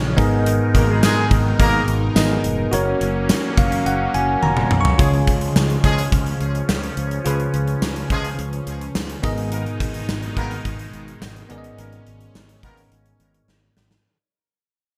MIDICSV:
0, 0, Header, 1, 6, 480
1, 0, Start_track
1, 0, Tempo, 566038
1, 393, Time_signature, 4, 2, 24, 8
1, 12697, End_track
2, 0, Start_track
2, 0, Title_t, "Tine electric piano"
2, 0, Program_c, 0, 4
2, 0, Control_c, 0, 64, 127
2, 0, Note_on_c, 0, 49, 81
2, 0, Note_on_c, 0, 65, 80
2, 0, Note_on_c, 0, 68, 73
2, 0, Note_on_c, 0, 73, 84
2, 114, Note_off_c, 0, 65, 0
2, 119, Note_off_c, 0, 68, 0
2, 125, Note_off_c, 0, 73, 0
2, 142, Note_on_c, 0, 59, 88
2, 147, Note_on_c, 0, 63, 82
2, 152, Note_on_c, 0, 44, 80
2, 153, Note_on_c, 0, 68, 79
2, 158, Note_on_c, 0, 70, 79
2, 163, Note_on_c, 0, 75, 90
2, 166, Control_c, 0, 64, 0
2, 169, Note_off_c, 0, 49, 0
2, 325, Control_c, 0, 64, 127
2, 839, Note_off_c, 0, 44, 0
2, 1794, Note_off_c, 0, 59, 0
2, 1796, Note_off_c, 0, 63, 0
2, 1799, Note_off_c, 0, 68, 0
2, 1802, Note_off_c, 0, 70, 0
2, 1805, Note_off_c, 0, 75, 0
2, 1826, Note_on_c, 0, 59, 62
2, 1830, Note_on_c, 0, 63, 57
2, 1832, Note_on_c, 0, 68, 56
2, 1835, Note_on_c, 0, 70, 55
2, 1837, Note_on_c, 0, 75, 71
2, 2302, Note_on_c, 0, 66, 81
2, 2303, Note_off_c, 0, 70, 0
2, 2310, Note_off_c, 0, 59, 0
2, 2311, Note_off_c, 0, 63, 0
2, 2313, Note_off_c, 0, 68, 0
2, 2314, Note_on_c, 0, 70, 76
2, 2315, Note_off_c, 0, 75, 0
2, 2323, Note_on_c, 0, 73, 94
2, 2324, Control_c, 0, 64, 0
2, 2449, Control_c, 0, 64, 127
2, 3036, Note_on_c, 0, 77, 68
2, 3258, Note_off_c, 0, 77, 0
2, 3276, Note_on_c, 0, 78, 77
2, 3498, Note_off_c, 0, 78, 0
2, 3514, Note_on_c, 0, 80, 74
2, 3737, Note_off_c, 0, 80, 0
2, 3754, Note_on_c, 0, 82, 74
2, 4052, Note_off_c, 0, 82, 0
2, 4076, Note_on_c, 0, 85, 74
2, 4194, Note_off_c, 0, 66, 0
2, 4200, Note_off_c, 0, 70, 0
2, 4204, Note_off_c, 0, 73, 0
2, 4223, Note_off_c, 0, 85, 0
2, 4224, Note_on_c, 0, 65, 80
2, 4233, Note_on_c, 0, 68, 74
2, 4234, Note_on_c, 0, 49, 74
2, 4243, Note_on_c, 0, 73, 86
2, 4245, Control_c, 0, 64, 0
2, 4395, Control_c, 0, 64, 127
2, 4920, Note_off_c, 0, 49, 0
2, 6115, Note_off_c, 0, 65, 0
2, 6119, Note_off_c, 0, 68, 0
2, 6124, Note_off_c, 0, 73, 0
2, 6144, Note_on_c, 0, 65, 74
2, 6154, Note_on_c, 0, 49, 77
2, 6154, Note_on_c, 0, 68, 70
2, 6164, Note_on_c, 0, 71, 85
2, 6840, Note_off_c, 0, 49, 0
2, 7795, Note_off_c, 0, 65, 0
2, 7800, Note_off_c, 0, 68, 0
2, 7805, Note_off_c, 0, 71, 0
2, 7822, Note_on_c, 0, 59, 77
2, 7827, Note_on_c, 0, 63, 75
2, 7831, Note_on_c, 0, 44, 76
2, 7833, Note_on_c, 0, 68, 74
2, 7837, Note_on_c, 0, 70, 74
2, 7843, Note_on_c, 0, 75, 87
2, 7844, Control_c, 0, 64, 0
2, 8007, Control_c, 0, 64, 127
2, 8518, Note_off_c, 0, 44, 0
2, 9714, Note_off_c, 0, 59, 0
2, 9716, Note_off_c, 0, 63, 0
2, 9719, Note_off_c, 0, 68, 0
2, 9721, Note_off_c, 0, 70, 0
2, 9724, Note_off_c, 0, 75, 0
2, 9743, Note_on_c, 0, 59, 78
2, 9750, Note_on_c, 0, 63, 73
2, 9754, Note_on_c, 0, 44, 74
2, 9754, Note_on_c, 0, 68, 70
2, 9760, Note_on_c, 0, 70, 72
2, 9764, Note_on_c, 0, 74, 67
2, 9814, Note_off_c, 0, 74, 0
2, 9819, Note_on_c, 0, 75, 82
2, 10440, Note_off_c, 0, 44, 0
2, 11634, Note_off_c, 0, 59, 0
2, 11638, Note_off_c, 0, 63, 0
2, 11640, Note_off_c, 0, 68, 0
2, 11643, Note_off_c, 0, 70, 0
2, 11672, Note_off_c, 0, 75, 0
2, 11926, Control_c, 0, 64, 0
2, 12697, End_track
3, 0, Start_track
3, 0, Title_t, "Horn section"
3, 0, Program_c, 1, 61
3, 633, Note_on_c, 1, 58, 88
3, 633, Note_on_c, 1, 70, 97
3, 729, Note_off_c, 1, 58, 0
3, 729, Note_off_c, 1, 70, 0
3, 753, Note_on_c, 1, 56, 91
3, 753, Note_on_c, 1, 68, 98
3, 849, Note_off_c, 1, 56, 0
3, 849, Note_off_c, 1, 68, 0
3, 875, Note_on_c, 1, 56, 112
3, 875, Note_on_c, 1, 68, 122
3, 1066, Note_off_c, 1, 68, 0
3, 1067, Note_off_c, 1, 56, 0
3, 1354, Note_on_c, 1, 58, 105
3, 1354, Note_on_c, 1, 70, 116
3, 1546, Note_off_c, 1, 58, 0
3, 1546, Note_off_c, 1, 70, 0
3, 4234, Note_on_c, 1, 53, 78
3, 4234, Note_on_c, 1, 61, 87
3, 4235, Note_on_c, 1, 56, 81
3, 4235, Note_on_c, 1, 68, 88
3, 4336, Note_off_c, 1, 53, 0
3, 4336, Note_off_c, 1, 56, 0
3, 4336, Note_off_c, 1, 61, 0
3, 4336, Note_off_c, 1, 68, 0
3, 4954, Note_on_c, 1, 53, 99
3, 4954, Note_on_c, 1, 56, 103
3, 4954, Note_on_c, 1, 68, 112
3, 4955, Note_on_c, 1, 61, 102
3, 5107, Note_off_c, 1, 53, 0
3, 5107, Note_off_c, 1, 56, 0
3, 5107, Note_off_c, 1, 68, 0
3, 5108, Note_off_c, 1, 61, 0
3, 6155, Note_on_c, 1, 53, 83
3, 6155, Note_on_c, 1, 61, 81
3, 6156, Note_on_c, 1, 56, 81
3, 6156, Note_on_c, 1, 68, 88
3, 6256, Note_off_c, 1, 53, 0
3, 6256, Note_off_c, 1, 61, 0
3, 6257, Note_off_c, 1, 56, 0
3, 6257, Note_off_c, 1, 68, 0
3, 6874, Note_on_c, 1, 53, 102
3, 6874, Note_on_c, 1, 56, 103
3, 6874, Note_on_c, 1, 61, 97
3, 6874, Note_on_c, 1, 68, 112
3, 7027, Note_off_c, 1, 53, 0
3, 7027, Note_off_c, 1, 56, 0
3, 7027, Note_off_c, 1, 61, 0
3, 7027, Note_off_c, 1, 68, 0
3, 8074, Note_on_c, 1, 58, 85
3, 8074, Note_on_c, 1, 70, 92
3, 8075, Note_on_c, 1, 51, 84
3, 8075, Note_on_c, 1, 59, 79
3, 8176, Note_off_c, 1, 51, 0
3, 8176, Note_off_c, 1, 58, 0
3, 8176, Note_off_c, 1, 59, 0
3, 8176, Note_off_c, 1, 70, 0
3, 8793, Note_on_c, 1, 58, 99
3, 8793, Note_on_c, 1, 59, 101
3, 8793, Note_on_c, 1, 70, 107
3, 8794, Note_on_c, 1, 51, 99
3, 8946, Note_off_c, 1, 51, 0
3, 8946, Note_off_c, 1, 58, 0
3, 8946, Note_off_c, 1, 59, 0
3, 8946, Note_off_c, 1, 70, 0
3, 9995, Note_on_c, 1, 59, 80
3, 9996, Note_on_c, 1, 51, 79
3, 9996, Note_on_c, 1, 58, 80
3, 9996, Note_on_c, 1, 70, 87
3, 10097, Note_off_c, 1, 51, 0
3, 10097, Note_off_c, 1, 58, 0
3, 10097, Note_off_c, 1, 59, 0
3, 10097, Note_off_c, 1, 70, 0
3, 10716, Note_on_c, 1, 51, 98
3, 10716, Note_on_c, 1, 58, 95
3, 10716, Note_on_c, 1, 70, 104
3, 10717, Note_on_c, 1, 59, 103
3, 10868, Note_off_c, 1, 51, 0
3, 10868, Note_off_c, 1, 58, 0
3, 10868, Note_off_c, 1, 70, 0
3, 10869, Note_off_c, 1, 59, 0
3, 12697, End_track
4, 0, Start_track
4, 0, Title_t, "Analog synth pad"
4, 0, Program_c, 2, 89
4, 0, Note_on_c, 2, 53, 89
4, 0, Note_on_c, 2, 56, 75
4, 0, Note_on_c, 2, 61, 88
4, 119, Note_off_c, 2, 61, 0
4, 120, Note_off_c, 2, 53, 0
4, 151, Note_on_c, 2, 51, 81
4, 151, Note_on_c, 2, 63, 96
4, 152, Note_on_c, 2, 47, 87
4, 152, Note_on_c, 2, 70, 80
4, 2280, Note_off_c, 2, 56, 0
4, 2291, Note_off_c, 2, 47, 0
4, 2291, Note_off_c, 2, 51, 0
4, 2291, Note_off_c, 2, 63, 0
4, 2291, Note_off_c, 2, 70, 0
4, 2315, Note_on_c, 2, 54, 84
4, 2315, Note_on_c, 2, 61, 88
4, 2316, Note_on_c, 2, 58, 77
4, 4215, Note_off_c, 2, 54, 0
4, 4215, Note_off_c, 2, 58, 0
4, 4215, Note_off_c, 2, 61, 0
4, 4231, Note_on_c, 2, 61, 94
4, 4232, Note_on_c, 2, 53, 79
4, 4232, Note_on_c, 2, 56, 77
4, 6133, Note_off_c, 2, 56, 0
4, 7798, Note_off_c, 2, 61, 0
4, 7799, Note_off_c, 2, 53, 0
4, 7829, Note_on_c, 2, 51, 82
4, 7829, Note_on_c, 2, 56, 83
4, 7830, Note_on_c, 2, 47, 88
4, 7830, Note_on_c, 2, 63, 98
4, 9733, Note_off_c, 2, 63, 0
4, 9752, Note_on_c, 2, 61, 98
4, 11877, Note_off_c, 2, 51, 0
4, 11877, Note_off_c, 2, 56, 0
4, 11878, Note_off_c, 2, 47, 0
4, 11891, Note_off_c, 2, 61, 0
4, 12697, End_track
5, 0, Start_track
5, 0, Title_t, "Fretless electric bass"
5, 0, Program_c, 3, 35
5, 0, Note_on_c, 3, 34, 96
5, 153, Note_off_c, 3, 34, 0
5, 153, Note_on_c, 3, 32, 110
5, 499, Note_off_c, 3, 32, 0
5, 634, Note_on_c, 3, 32, 114
5, 893, Note_off_c, 3, 32, 0
5, 1111, Note_on_c, 3, 32, 100
5, 1285, Note_off_c, 3, 32, 0
5, 1352, Note_on_c, 3, 32, 110
5, 1525, Note_off_c, 3, 32, 0
5, 1591, Note_on_c, 3, 32, 101
5, 1765, Note_off_c, 3, 32, 0
5, 1833, Note_on_c, 3, 32, 105
5, 2006, Note_off_c, 3, 32, 0
5, 2072, Note_on_c, 3, 29, 90
5, 2245, Note_off_c, 3, 29, 0
5, 2313, Note_on_c, 3, 30, 106
5, 2486, Note_off_c, 3, 30, 0
5, 2553, Note_on_c, 3, 30, 99
5, 2813, Note_off_c, 3, 30, 0
5, 3031, Note_on_c, 3, 30, 101
5, 3205, Note_off_c, 3, 30, 0
5, 3273, Note_on_c, 3, 30, 112
5, 3446, Note_off_c, 3, 30, 0
5, 3514, Note_on_c, 3, 30, 97
5, 3687, Note_off_c, 3, 30, 0
5, 3754, Note_on_c, 3, 29, 85
5, 3926, Note_off_c, 3, 29, 0
5, 3994, Note_on_c, 3, 35, 90
5, 4167, Note_off_c, 3, 35, 0
5, 4233, Note_on_c, 3, 37, 107
5, 4406, Note_off_c, 3, 37, 0
5, 4473, Note_on_c, 3, 37, 99
5, 4646, Note_off_c, 3, 37, 0
5, 4713, Note_on_c, 3, 37, 101
5, 4886, Note_off_c, 3, 37, 0
5, 4951, Note_on_c, 3, 37, 107
5, 5124, Note_off_c, 3, 37, 0
5, 5192, Note_on_c, 3, 37, 102
5, 5365, Note_off_c, 3, 37, 0
5, 5431, Note_on_c, 3, 37, 96
5, 5605, Note_off_c, 3, 37, 0
5, 5672, Note_on_c, 3, 37, 93
5, 5845, Note_off_c, 3, 37, 0
5, 5913, Note_on_c, 3, 37, 99
5, 6086, Note_off_c, 3, 37, 0
5, 6153, Note_on_c, 3, 37, 107
5, 6326, Note_off_c, 3, 37, 0
5, 6391, Note_on_c, 3, 37, 102
5, 6565, Note_off_c, 3, 37, 0
5, 6632, Note_on_c, 3, 37, 103
5, 6805, Note_off_c, 3, 37, 0
5, 6870, Note_on_c, 3, 37, 97
5, 7044, Note_off_c, 3, 37, 0
5, 7112, Note_on_c, 3, 37, 117
5, 7285, Note_off_c, 3, 37, 0
5, 7351, Note_on_c, 3, 37, 94
5, 7525, Note_off_c, 3, 37, 0
5, 7593, Note_on_c, 3, 37, 103
5, 7766, Note_off_c, 3, 37, 0
5, 7833, Note_on_c, 3, 32, 104
5, 8179, Note_off_c, 3, 32, 0
5, 8313, Note_on_c, 3, 32, 104
5, 8486, Note_off_c, 3, 32, 0
5, 8553, Note_on_c, 3, 32, 101
5, 8726, Note_off_c, 3, 32, 0
5, 8792, Note_on_c, 3, 32, 97
5, 8965, Note_off_c, 3, 32, 0
5, 9032, Note_on_c, 3, 32, 102
5, 9206, Note_off_c, 3, 32, 0
5, 9273, Note_on_c, 3, 32, 102
5, 9446, Note_off_c, 3, 32, 0
5, 9512, Note_on_c, 3, 32, 98
5, 9685, Note_off_c, 3, 32, 0
5, 9753, Note_on_c, 3, 32, 90
5, 9926, Note_off_c, 3, 32, 0
5, 9994, Note_on_c, 3, 32, 110
5, 10167, Note_off_c, 3, 32, 0
5, 10235, Note_on_c, 3, 32, 103
5, 10407, Note_off_c, 3, 32, 0
5, 10475, Note_on_c, 3, 32, 100
5, 10647, Note_off_c, 3, 32, 0
5, 10712, Note_on_c, 3, 32, 96
5, 10885, Note_off_c, 3, 32, 0
5, 10954, Note_on_c, 3, 32, 100
5, 11127, Note_off_c, 3, 32, 0
5, 11192, Note_on_c, 3, 32, 103
5, 11365, Note_off_c, 3, 32, 0
5, 11434, Note_on_c, 3, 32, 100
5, 11606, Note_off_c, 3, 32, 0
5, 11674, Note_on_c, 3, 32, 89
5, 11847, Note_off_c, 3, 32, 0
5, 12697, End_track
6, 0, Start_track
6, 0, Title_t, "Drums"
6, 152, Note_on_c, 9, 42, 81
6, 153, Note_on_c, 9, 36, 113
6, 236, Note_off_c, 9, 42, 0
6, 238, Note_off_c, 9, 36, 0
6, 394, Note_on_c, 9, 42, 107
6, 478, Note_off_c, 9, 42, 0
6, 634, Note_on_c, 9, 36, 90
6, 634, Note_on_c, 9, 42, 76
6, 718, Note_off_c, 9, 36, 0
6, 719, Note_off_c, 9, 42, 0
6, 872, Note_on_c, 9, 42, 92
6, 874, Note_on_c, 9, 38, 108
6, 874, Note_on_c, 9, 54, 69
6, 957, Note_off_c, 9, 42, 0
6, 959, Note_off_c, 9, 38, 0
6, 959, Note_off_c, 9, 54, 0
6, 1111, Note_on_c, 9, 36, 106
6, 1113, Note_on_c, 9, 42, 67
6, 1196, Note_off_c, 9, 36, 0
6, 1197, Note_off_c, 9, 42, 0
6, 1353, Note_on_c, 9, 36, 102
6, 1354, Note_on_c, 9, 42, 76
6, 1438, Note_off_c, 9, 36, 0
6, 1439, Note_off_c, 9, 42, 0
6, 1593, Note_on_c, 9, 42, 68
6, 1678, Note_off_c, 9, 42, 0
6, 1832, Note_on_c, 9, 38, 127
6, 1832, Note_on_c, 9, 54, 74
6, 1834, Note_on_c, 9, 42, 77
6, 1916, Note_off_c, 9, 38, 0
6, 1917, Note_off_c, 9, 54, 0
6, 1919, Note_off_c, 9, 42, 0
6, 2070, Note_on_c, 9, 42, 87
6, 2155, Note_off_c, 9, 42, 0
6, 2313, Note_on_c, 9, 42, 102
6, 2398, Note_off_c, 9, 42, 0
6, 2554, Note_on_c, 9, 42, 76
6, 2639, Note_off_c, 9, 42, 0
6, 2792, Note_on_c, 9, 42, 90
6, 2794, Note_on_c, 9, 54, 68
6, 2795, Note_on_c, 9, 38, 118
6, 2877, Note_off_c, 9, 42, 0
6, 2879, Note_off_c, 9, 38, 0
6, 2879, Note_off_c, 9, 54, 0
6, 3032, Note_on_c, 9, 36, 101
6, 3034, Note_on_c, 9, 42, 64
6, 3116, Note_off_c, 9, 36, 0
6, 3118, Note_off_c, 9, 42, 0
6, 3155, Note_on_c, 9, 42, 64
6, 3240, Note_off_c, 9, 42, 0
6, 3276, Note_on_c, 9, 42, 78
6, 3360, Note_off_c, 9, 42, 0
6, 3514, Note_on_c, 9, 42, 73
6, 3599, Note_off_c, 9, 42, 0
6, 3753, Note_on_c, 9, 48, 68
6, 3838, Note_off_c, 9, 48, 0
6, 3872, Note_on_c, 9, 47, 74
6, 3957, Note_off_c, 9, 47, 0
6, 3992, Note_on_c, 9, 45, 99
6, 4077, Note_off_c, 9, 45, 0
6, 4112, Note_on_c, 9, 43, 109
6, 4197, Note_off_c, 9, 43, 0
6, 4233, Note_on_c, 9, 36, 124
6, 4233, Note_on_c, 9, 42, 107
6, 4318, Note_off_c, 9, 36, 0
6, 4318, Note_off_c, 9, 42, 0
6, 4354, Note_on_c, 9, 42, 52
6, 4439, Note_off_c, 9, 42, 0
6, 4472, Note_on_c, 9, 42, 78
6, 4473, Note_on_c, 9, 36, 89
6, 4557, Note_off_c, 9, 42, 0
6, 4558, Note_off_c, 9, 36, 0
6, 4589, Note_on_c, 9, 42, 58
6, 4674, Note_off_c, 9, 42, 0
6, 4714, Note_on_c, 9, 38, 112
6, 4714, Note_on_c, 9, 54, 72
6, 4799, Note_off_c, 9, 38, 0
6, 4799, Note_off_c, 9, 54, 0
6, 4832, Note_on_c, 9, 42, 62
6, 4917, Note_off_c, 9, 42, 0
6, 4951, Note_on_c, 9, 36, 100
6, 4953, Note_on_c, 9, 42, 66
6, 5036, Note_off_c, 9, 36, 0
6, 5038, Note_off_c, 9, 42, 0
6, 5074, Note_on_c, 9, 42, 66
6, 5159, Note_off_c, 9, 42, 0
6, 5192, Note_on_c, 9, 36, 99
6, 5193, Note_on_c, 9, 42, 76
6, 5277, Note_off_c, 9, 36, 0
6, 5278, Note_off_c, 9, 42, 0
6, 5312, Note_on_c, 9, 42, 53
6, 5397, Note_off_c, 9, 42, 0
6, 5432, Note_on_c, 9, 42, 71
6, 5517, Note_off_c, 9, 42, 0
6, 5554, Note_on_c, 9, 42, 55
6, 5639, Note_off_c, 9, 42, 0
6, 5672, Note_on_c, 9, 38, 127
6, 5673, Note_on_c, 9, 54, 74
6, 5757, Note_off_c, 9, 38, 0
6, 5757, Note_off_c, 9, 54, 0
6, 5795, Note_on_c, 9, 42, 56
6, 5880, Note_off_c, 9, 42, 0
6, 5911, Note_on_c, 9, 42, 80
6, 5996, Note_off_c, 9, 42, 0
6, 6031, Note_on_c, 9, 42, 59
6, 6116, Note_off_c, 9, 42, 0
6, 6153, Note_on_c, 9, 42, 111
6, 6238, Note_off_c, 9, 42, 0
6, 6272, Note_on_c, 9, 42, 53
6, 6357, Note_off_c, 9, 42, 0
6, 6392, Note_on_c, 9, 42, 78
6, 6477, Note_off_c, 9, 42, 0
6, 6508, Note_on_c, 9, 42, 59
6, 6593, Note_off_c, 9, 42, 0
6, 6632, Note_on_c, 9, 38, 106
6, 6632, Note_on_c, 9, 54, 68
6, 6716, Note_off_c, 9, 54, 0
6, 6717, Note_off_c, 9, 38, 0
6, 6751, Note_on_c, 9, 42, 59
6, 6836, Note_off_c, 9, 42, 0
6, 6871, Note_on_c, 9, 36, 97
6, 6871, Note_on_c, 9, 42, 66
6, 6955, Note_off_c, 9, 36, 0
6, 6956, Note_off_c, 9, 42, 0
6, 6992, Note_on_c, 9, 42, 63
6, 7077, Note_off_c, 9, 42, 0
6, 7112, Note_on_c, 9, 42, 76
6, 7197, Note_off_c, 9, 42, 0
6, 7232, Note_on_c, 9, 42, 52
6, 7317, Note_off_c, 9, 42, 0
6, 7351, Note_on_c, 9, 42, 70
6, 7436, Note_off_c, 9, 42, 0
6, 7474, Note_on_c, 9, 42, 54
6, 7559, Note_off_c, 9, 42, 0
6, 7591, Note_on_c, 9, 38, 125
6, 7592, Note_on_c, 9, 54, 70
6, 7676, Note_off_c, 9, 38, 0
6, 7677, Note_off_c, 9, 54, 0
6, 7712, Note_on_c, 9, 42, 57
6, 7797, Note_off_c, 9, 42, 0
6, 7830, Note_on_c, 9, 42, 85
6, 7833, Note_on_c, 9, 36, 106
6, 7915, Note_off_c, 9, 42, 0
6, 7918, Note_off_c, 9, 36, 0
6, 7951, Note_on_c, 9, 42, 58
6, 8036, Note_off_c, 9, 42, 0
6, 8072, Note_on_c, 9, 42, 100
6, 8156, Note_off_c, 9, 42, 0
6, 8195, Note_on_c, 9, 42, 53
6, 8279, Note_off_c, 9, 42, 0
6, 8314, Note_on_c, 9, 36, 86
6, 8314, Note_on_c, 9, 42, 79
6, 8398, Note_off_c, 9, 36, 0
6, 8399, Note_off_c, 9, 42, 0
6, 8430, Note_on_c, 9, 42, 59
6, 8514, Note_off_c, 9, 42, 0
6, 8554, Note_on_c, 9, 38, 112
6, 8554, Note_on_c, 9, 54, 67
6, 8639, Note_off_c, 9, 38, 0
6, 8639, Note_off_c, 9, 54, 0
6, 8672, Note_on_c, 9, 42, 57
6, 8757, Note_off_c, 9, 42, 0
6, 8791, Note_on_c, 9, 36, 98
6, 8792, Note_on_c, 9, 42, 65
6, 8876, Note_off_c, 9, 36, 0
6, 8877, Note_off_c, 9, 42, 0
6, 8913, Note_on_c, 9, 42, 65
6, 8998, Note_off_c, 9, 42, 0
6, 9033, Note_on_c, 9, 36, 99
6, 9033, Note_on_c, 9, 42, 75
6, 9117, Note_off_c, 9, 42, 0
6, 9118, Note_off_c, 9, 36, 0
6, 9152, Note_on_c, 9, 42, 52
6, 9237, Note_off_c, 9, 42, 0
6, 9272, Note_on_c, 9, 42, 65
6, 9357, Note_off_c, 9, 42, 0
6, 9396, Note_on_c, 9, 42, 54
6, 9481, Note_off_c, 9, 42, 0
6, 9512, Note_on_c, 9, 38, 125
6, 9513, Note_on_c, 9, 54, 67
6, 9597, Note_off_c, 9, 38, 0
6, 9598, Note_off_c, 9, 54, 0
6, 9635, Note_on_c, 9, 42, 58
6, 9720, Note_off_c, 9, 42, 0
6, 9750, Note_on_c, 9, 42, 83
6, 9835, Note_off_c, 9, 42, 0
6, 9871, Note_on_c, 9, 42, 58
6, 9956, Note_off_c, 9, 42, 0
6, 9994, Note_on_c, 9, 42, 102
6, 10078, Note_off_c, 9, 42, 0
6, 10113, Note_on_c, 9, 42, 50
6, 10197, Note_off_c, 9, 42, 0
6, 10232, Note_on_c, 9, 42, 73
6, 10317, Note_off_c, 9, 42, 0
6, 10350, Note_on_c, 9, 42, 58
6, 10435, Note_off_c, 9, 42, 0
6, 10474, Note_on_c, 9, 54, 67
6, 10475, Note_on_c, 9, 38, 106
6, 10559, Note_off_c, 9, 54, 0
6, 10560, Note_off_c, 9, 38, 0
6, 10592, Note_on_c, 9, 42, 60
6, 10677, Note_off_c, 9, 42, 0
6, 10712, Note_on_c, 9, 36, 93
6, 10713, Note_on_c, 9, 42, 59
6, 10797, Note_off_c, 9, 36, 0
6, 10797, Note_off_c, 9, 42, 0
6, 10833, Note_on_c, 9, 42, 63
6, 10917, Note_off_c, 9, 42, 0
6, 10954, Note_on_c, 9, 42, 75
6, 11039, Note_off_c, 9, 42, 0
6, 11072, Note_on_c, 9, 42, 52
6, 11157, Note_off_c, 9, 42, 0
6, 11193, Note_on_c, 9, 42, 68
6, 11278, Note_off_c, 9, 42, 0
6, 11316, Note_on_c, 9, 42, 53
6, 11401, Note_off_c, 9, 42, 0
6, 11434, Note_on_c, 9, 38, 67
6, 11519, Note_off_c, 9, 38, 0
6, 11674, Note_on_c, 9, 38, 95
6, 11759, Note_off_c, 9, 38, 0
6, 11794, Note_on_c, 9, 38, 96
6, 11879, Note_off_c, 9, 38, 0
6, 12697, End_track
0, 0, End_of_file